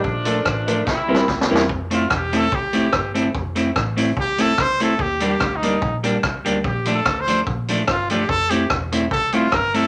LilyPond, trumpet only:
\new Staff \with { instrumentName = "Trumpet" } { \time 4/4 \key f \major \tempo 4 = 146 r1 | r8 f'16. ges'32 g'8 a'8 g'4. r8 | r2 g'8 a'8 c''8 a'8 | \tuplet 3/2 { g'4 g'8~ g'8 ees'4~ } ees'16. r4. r32 |
\tuplet 3/2 { g'4 a'8~ a'8 c''8. r16 } r4 f'8 g'8 | a'8 g'8 r4 a'8 f'8 bes'8 a'8 | }